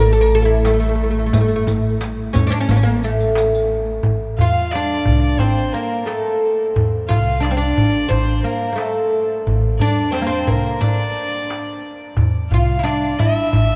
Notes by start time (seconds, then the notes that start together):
Already playing: A1 A2
0.00 A#4
0.13 A4, riq
0.21 A#4
0.32 A4, riq, darbuka ka
0.42 E4 F4
0.48 darbuka ka
0.65 A3, riq, darbuka tek
0.73 A3
0.80 A3, riq
0.89 A3
0.95 A3
1.03 A3
1.11 A3
1.19 A3
1.26 A3
1.33 G1 A3, riq, darbuka dum
1.40 A3
1.48 A3
1.56 A3
1.67 A1, riq, darbuka dum
1.84 darbuka ka
2.01 riq, darbuka tek
2.33 E2 C#4, riq, darbuka dum
2.47 C#4 D4
2.52 D4
2.60 C#4
2.69 A1 A#3, riq, darbuka dum
2.77 C#4
2.83 A#3, riq, darbuka ka
3.03 A3, riq
3.20 riq, darbuka ka
3.35 riq, darbuka tek
3.53 riq, darbuka ka
4.03 A1, darbuka dum
4.39 E2 F4 F5, darbuka dum
4.72 D4 D5, darbuka tek
5.05 C2, darbuka dum
5.22 D5
5.39 A1 C4 C5, darbuka dum
5.73 A#3 A#4, darbuka ka
6.06 A3 A4, darbuka tek
6.25 darbuka ka
6.76 E2, darbuka dum
7.09 C2 F4 F5, darbuka dum
7.40 D4 D5, darbuka tek
7.51 C4
7.57 D4 D5
7.77 A1, darbuka dum
8.09 A1 C4 C5, darbuka dum
8.28 darbuka ka
8.44 A#3 A#4, darbuka ka
8.73 A3 A#3
8.78 A4, darbuka tek
8.95 darbuka ka
9.47 A1, darbuka dum
9.80 E2 D4 D5, darbuka dum
10.12 C4 C5, darbuka tek
10.22 A#3
10.27 C4 C5
10.47 C2 A#3 A#4, darbuka dum
10.81 A1 D4 D5, darbuka dum
11.17 darbuka ka
11.50 darbuka tek
11.67 darbuka ka
12.17 E2, darbuka dum
12.51 C2 F4 F5, darbuka dum
12.68 darbuka ka
12.79 E4
12.83 D4 D5, darbuka tek
13.19 A1 E4 E5, darbuka dum
13.53 A1, darbuka dum